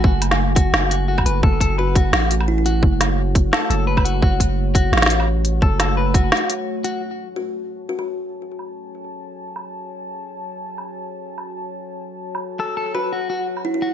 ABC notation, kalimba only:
X:1
M:4/4
L:1/16
Q:"Swing 16ths" 1/4=172
K:F#m
V:1 name="Kalimba"
z16 | z4 F2 z6 E E z2 | z16 | z16 |
z16 | z4 F2 z4 F F z4 | z16 | z16 |
z16 | z4 F2 z6 E E z2 |]